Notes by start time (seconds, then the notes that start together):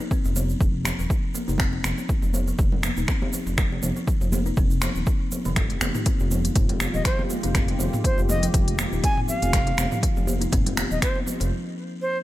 0.00 shaker
0.11 C4, kick, shaker
0.25 F1, muted conga, shaker
0.36 F3, high conga, shaker
0.50 shaker
0.60 F1, kick, muted conga, shaker
0.85 F3, finger snap, muted conga, high conga, shaker
0.99 D#1 F3, shaker
1.10 kick, muted conga, shaker
1.34 A#3, high conga, shaker
1.48 F1 D#4, muted conga, shaker
1.58 C4, finger snap, kick, low conga, shaker
1.73 muted conga
1.84 F1 F3, finger snap, high conga, shaker
1.98 muted conga, shaker
2.09 kick, shaker
2.22 F1, muted conga, shaker
2.34 F3, high conga, shaker
2.48 F3, shaker
2.58 F1, kick, muted conga, high conga, shaker
2.72 low conga
2.83 A#3, finger snap, muted conga, high conga, shaker
2.97 D#1 D#4, shaker
3.08 C4, finger snap, kick, muted conga, shaker
3.22 high conga
3.33 F3, high conga, shaker
3.46 F1, muted conga, shaker
3.58 finger snap, kick, low conga, shaker
3.72 muted conga
3.82 F1 F3, high conga, shaker
3.96 F3, muted conga, shaker
4.08 kick, shaker
4.21 F1, muted conga, shaker
4.32 A#3, high conga, shaker
4.46 D#4, shaker
4.57 F1 C4, kick, muted conga, shaker
4.70 shaker
4.82 F3, finger snap, muted conga, high conga, shaker
4.95 D#1, shaker
5.07 kick, muted conga, shaker
5.32 F3, high conga, shaker
5.45 F1 D#3, muted conga, shaker
5.56 D#3 G#3 F4 G4, finger snap, kick, closed hi-hat, mid tom, low conga, shaker
5.70 closed hi-hat, muted conga
5.81 F1 A#3, finger snap, high conga, shaker
5.95 D#4, mid tom, muted conga, shaker
6.06 C4, kick, closed hi-hat, shaker
6.20 F1, muted conga, shaker
6.31 F3, high conga, shaker
6.45 closed hi-hat, shaker
6.56 F1, kick, closed hi-hat, mid tom, muted conga, high conga, shaker
6.69 closed hi-hat, low conga
6.80 F3, finger snap, muted conga, high conga, shaker
6.94 D#1 F3 D#5, shaker
7.05 C5, finger snap, kick, closed hi-hat, muted conga, shaker
7.19 high conga
7.30 A#3, high conga, shaker
7.43 F1 D#4, closed hi-hat, muted conga, shaker
7.55 C4, finger snap, kick, closed hi-hat, mid tom, low conga, shaker
7.68 closed hi-hat, muted conga
7.79 F1 F3, high conga, shaker
7.93 mid tom, muted conga, shaker
8.04 C5, kick, closed hi-hat, shaker
8.18 F1, muted conga, shaker
8.29 F3 D#5, high conga, shaker
8.42 F3, closed hi-hat, shaker
8.54 F1, kick, closed hi-hat, muted conga, shaker
8.68 closed hi-hat
8.78 A#3, finger snap, muted conga, high conga, shaker
8.92 D#1 D#4, shaker
9.04 C4 G#5, kick, closed hi-hat, muted conga, shaker
9.17 mid tom
9.28 F3 F5, high conga, shaker
9.42 F1, closed hi-hat, muted conga, shaker
9.53 finger snap, kick, closed hi-hat, mid tom, low conga, shaker
9.67 closed hi-hat, muted conga
9.78 F1 F3, finger snap, high conga, shaker
9.91 F3, mid tom, muted conga, shaker
10.03 kick, closed hi-hat, shaker
10.17 F1, muted conga, shaker
10.27 A#3, high conga, shaker
10.41 D#4, closed hi-hat, shaker
10.52 F1 C4, kick, closed hi-hat, mid tom, muted conga, high conga, shaker
10.66 closed hi-hat, low conga
10.77 F3, finger snap, muted conga, high conga, shaker
10.91 D#1 D#5, shaker
11.02 C5, finger snap, kick, closed hi-hat, muted conga, shaker
11.15 high conga
11.26 F3, high conga, shaker
11.40 F1 F3, closed hi-hat, muted conga, shaker
12.02 C5